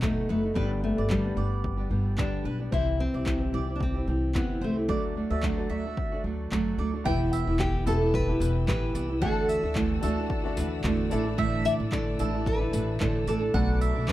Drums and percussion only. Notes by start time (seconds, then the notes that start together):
0.02 kick, clap
0.56 kick
1.10 kick, clap
1.64 kick
2.18 kick, clap
2.72 kick
3.26 kick, clap
3.80 kick
4.35 kick, clap
4.89 kick
5.43 kick, clap
5.97 kick
6.52 kick, clap
7.06 kick
7.33 tambourine
7.59 kick, clap
7.87 tambourine
8.14 kick
8.41 tambourine
8.68 kick, clap
8.95 tambourine
9.22 kick
9.49 tambourine
9.75 kick, clap
10.03 tambourine
10.30 kick
10.57 tambourine
10.84 kick, clap
11.11 tambourine
11.38 kick
11.65 tambourine
11.92 kick, clap
12.19 tambourine
12.46 kick
12.73 tambourine
13.00 kick, clap
13.27 tambourine
13.54 kick
13.82 tambourine
14.08 kick, clap